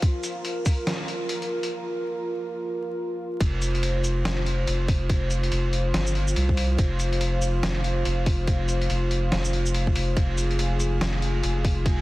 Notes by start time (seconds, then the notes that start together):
Already playing: F4
0.02 A#4, kick, closed hi-hat
0.23 closed hi-hat, shaker
0.45 closed hi-hat
0.66 kick, open hi-hat, shaker
0.87 snare, closed hi-hat
1.08 closed hi-hat
1.29 closed hi-hat
1.42 closed hi-hat
1.63 closed hi-hat
3.40 F1 F4 C5, kick, closed hi-hat, ride
3.62 closed hi-hat, shaker
3.75 closed hi-hat
3.83 closed hi-hat, ride
4.04 closed hi-hat, shaker
4.25 F1, snare, closed hi-hat, ride
4.46 closed hi-hat
4.67 F1, closed hi-hat, ride
4.88 kick, open hi-hat
5.10 kick, closed hi-hat, ride
5.31 closed hi-hat, shaker
5.43 closed hi-hat
5.52 F1, closed hi-hat, ride
5.73 closed hi-hat
5.94 G1, snare, closed hi-hat, ride
6.07 shaker
6.15 closed hi-hat
6.28 shaker
6.36 C2, closed hi-hat, ride
6.49 kick
6.57 open hi-hat
6.79 F1, kick, closed hi-hat, ride
7.00 closed hi-hat, shaker
7.13 closed hi-hat
7.21 closed hi-hat, ride
7.42 closed hi-hat, shaker
7.63 F1, snare, closed hi-hat, ride
7.84 closed hi-hat
8.05 F1, closed hi-hat, ride
8.26 kick, open hi-hat
8.47 kick, closed hi-hat, ride
8.69 closed hi-hat, shaker
8.81 closed hi-hat
8.90 F1, closed hi-hat, ride
9.11 closed hi-hat
9.32 F1, snare, closed hi-hat, ride
9.45 shaker
9.53 closed hi-hat
9.66 shaker
9.74 closed hi-hat, ride
9.87 kick
9.96 F1, open hi-hat
10.17 F1 G#4, kick, closed hi-hat, ride
10.38 closed hi-hat, shaker
10.51 closed hi-hat
10.59 closed hi-hat, ride
10.80 closed hi-hat, shaker
11.01 F1, snare, closed hi-hat, ride
11.22 closed hi-hat
11.43 F1, closed hi-hat, ride
11.65 kick, open hi-hat
11.86 kick, closed hi-hat, ride